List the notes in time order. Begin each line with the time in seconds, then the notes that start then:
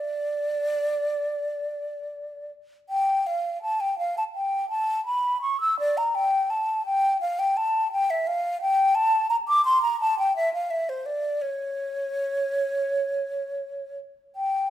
Already playing: D5
2.89 G5
3.27 F5
3.62 A5
3.80 G5
3.98 F5
4.18 A5
4.34 G5
4.70 A5
5.06 B5
5.42 C#6
5.60 E6
5.79 D5
5.97 A#5
6.15 G5
6.50 A5
6.86 G5
7.21 F5
7.39 G5
7.57 A5
7.92 G5
8.10 E5
8.27 F5
8.62 G5
8.95 A5
9.30 A#5
9.48 D6
9.65 C6
9.82 A#5
10.01 A5
10.19 G5
10.36 E5
10.53 F5
10.71 E5
10.89 C5
11.06 D5
11.42 C#5
14.36 G5